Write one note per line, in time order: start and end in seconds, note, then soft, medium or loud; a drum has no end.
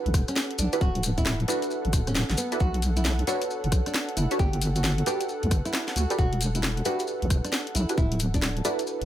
0.00 0.70 D4 medium
0.00 0.70 E4 medium
0.00 0.70 F#4 medium
0.00 0.70 G4 medium
0.00 9.05 A4 medium
0.00 0.70 B4 loud
0.00 9.05 F#5 medium
0.06 0.16 B1 medium
0.06 closed hi-hat soft
0.14 0.25 E1 medium
0.14 kick loud
0.14 cross-stick medium
0.14 open hi-hat loud
0.14 maracas medium
0.28 0.49 C#4 medium
0.28 cross-stick soft
0.28 closed hi-hat medium
0.28 maracas medium
0.36 snare loud
0.36 maracas soft
0.51 closed hi-hat soft
0.58 0.69 B1 loud
0.58 0.75 D4 medium
0.58 open hi-hat loud
0.58 maracas loud
0.73 0.80 D4 medium
0.73 0.80 E4 medium
0.73 0.80 F#4 medium
0.73 0.80 G4 medium
0.73 0.80 B4 medium
0.73 closed hi-hat medium
0.73 maracas soft
0.81 1.45 D1 medium
0.81 1.02 F#4 medium
0.81 kick loud
0.81 maracas soft
0.95 closed hi-hat medium
1.03 open hi-hat loud
1.03 maracas loud
1.18 1.38 E4 medium
1.18 kick medium
1.18 closed hi-hat medium
1.18 maracas medium
1.26 snare loud
1.26 maracas soft
1.40 closed hi-hat soft
1.48 2.49 D4 medium
1.48 2.49 E4 medium
1.48 2.49 F#4 medium
1.48 1.65 F#4 medium
1.48 2.49 A4 medium
1.48 2.49 B4 medium
1.48 open hi-hat medium
1.48 maracas loud
1.62 closed hi-hat medium
1.62 maracas medium
1.71 maracas soft
1.85 1.95 A1 medium
1.85 closed hi-hat soft
1.93 2.24 D1 medium
1.93 kick loud
1.93 cross-stick medium
1.93 open hi-hat loud
1.93 maracas medium
2.07 2.28 C#4 medium
2.07 cross-stick soft
2.07 closed hi-hat medium
2.07 maracas medium
2.15 snare loud
2.15 maracas soft
2.30 2.36 A1 loud
2.30 snare medium
2.30 closed hi-hat medium
2.37 2.54 B3 medium
2.37 open hi-hat medium
2.37 maracas medium
2.52 2.59 D4 medium
2.52 2.59 E4 medium
2.52 2.59 F#4 medium
2.52 2.59 A4 medium
2.52 2.59 B4 medium
2.52 closed hi-hat medium
2.52 maracas medium
2.60 3.24 B1 loud
2.60 2.82 F#4 loud
2.60 kick loud
2.60 maracas soft
2.74 closed hi-hat medium
2.82 open hi-hat loud
2.82 maracas medium
2.97 3.17 E4 medium
2.97 closed hi-hat medium
2.97 maracas medium
3.05 snare loud
3.05 maracas soft
3.19 closed hi-hat soft
3.27 4.28 D4 medium
3.27 3.44 F#4 medium
3.27 4.28 F#4 medium
3.27 4.28 A4 medium
3.27 4.28 B4 medium
3.27 4.28 C#5 medium
3.27 open hi-hat medium
3.27 maracas medium
3.42 closed hi-hat medium
3.42 maracas soft
3.50 maracas soft
3.64 3.74 F#1 medium
3.64 closed hi-hat soft
3.72 3.83 B1 medium
3.72 kick loud
3.72 cross-stick medium
3.72 open hi-hat loud
3.72 maracas loud
3.86 4.07 D4 medium
3.86 cross-stick soft
3.86 closed hi-hat medium
3.86 maracas medium
3.94 snare loud
3.94 maracas soft
4.09 closed hi-hat medium
4.17 4.28 F#1 loud
4.17 4.33 E4 medium
4.17 open hi-hat loud
4.17 maracas medium
4.31 4.38 D4 medium
4.31 4.38 F#4 medium
4.31 4.38 A4 medium
4.31 4.38 B4 medium
4.31 4.38 C#5 medium
4.31 closed hi-hat medium
4.31 maracas medium
4.39 5.03 G1 loud
4.39 4.61 G4 loud
4.39 kick loud
4.39 maracas soft
4.53 closed hi-hat medium
4.61 open hi-hat loud
4.61 maracas medium
4.76 4.97 F#4 medium
4.76 closed hi-hat medium
4.76 maracas medium
4.84 snare loud
4.84 maracas soft
4.98 closed hi-hat soft
5.06 6.07 D4 medium
5.06 6.07 F#4 medium
5.06 6.07 G4 medium
5.06 5.23 G4 medium
5.06 6.07 A4 medium
5.06 6.07 B4 medium
5.06 open hi-hat loud
5.06 maracas medium
5.21 closed hi-hat medium
5.21 maracas medium
5.29 maracas soft
5.43 5.53 D2 medium
5.43 closed hi-hat soft
5.51 5.62 G1 medium
5.51 kick loud
5.51 cross-stick medium
5.51 open hi-hat loud
5.51 maracas medium
5.65 5.86 E4 medium
5.65 cross-stick soft
5.65 closed hi-hat medium
5.65 maracas medium
5.73 snare loud
5.73 maracas soft
5.88 snare medium
5.88 closed hi-hat medium
5.96 6.07 D2 loud
5.96 6.13 F#4 medium
5.96 open hi-hat loud
5.96 maracas medium
6.10 6.18 D4 medium
6.10 6.18 F#4 medium
6.10 6.18 G4 medium
6.10 6.18 A4 medium
6.10 6.18 B4 medium
6.10 closed hi-hat medium
6.10 maracas medium
6.19 6.82 E1 loud
6.19 6.40 F#4 loud
6.19 kick loud
6.19 maracas soft
6.33 closed hi-hat medium
6.41 open hi-hat loud
6.41 maracas medium
6.55 6.76 E4 medium
6.55 closed hi-hat medium
6.55 maracas soft
6.63 snare loud
6.63 maracas soft
6.77 closed hi-hat soft
6.85 7.86 D4 medium
6.85 7.86 E4 medium
6.85 7.86 F#4 medium
6.85 7.02 F#4 medium
6.85 7.86 G4 medium
6.85 7.86 B4 loud
6.85 open hi-hat loud
6.85 maracas medium
6.99 closed hi-hat medium
6.99 maracas soft
7.07 maracas soft
7.22 7.32 B1 medium
7.22 closed hi-hat soft
7.30 7.41 E1 medium
7.30 kick loud
7.30 cross-stick medium
7.30 open hi-hat loud
7.30 maracas loud
7.45 7.65 D4 medium
7.45 cross-stick soft
7.45 closed hi-hat medium
7.45 maracas soft
7.53 snare loud
7.53 maracas soft
7.67 closed hi-hat medium
7.75 7.86 B1 loud
7.75 7.91 E4 loud
7.75 open hi-hat loud
7.75 maracas medium
7.89 7.97 D4 medium
7.89 7.97 E4 medium
7.89 7.97 F#4 medium
7.89 7.97 G4 medium
7.89 7.97 B4 medium
7.89 closed hi-hat medium
7.89 maracas soft
7.97 8.61 D1 loud
7.97 8.19 E4 medium
7.97 kick loud
7.97 maracas soft
8.12 closed hi-hat medium
8.20 open hi-hat loud
8.20 maracas medium
8.34 8.55 D4 medium
8.34 kick medium
8.34 closed hi-hat medium
8.34 maracas soft
8.42 snare loud
8.42 maracas soft
8.57 closed hi-hat soft
8.65 9.05 D4 medium
8.65 9.05 E4 medium
8.65 8.81 E4 medium
8.65 9.05 F#4 medium
8.65 9.05 A4 medium
8.65 9.05 B4 loud
8.65 open hi-hat loud
8.65 maracas medium
8.79 closed hi-hat medium
8.79 maracas soft
8.87 maracas soft
9.01 9.05 D1 medium
9.01 closed hi-hat soft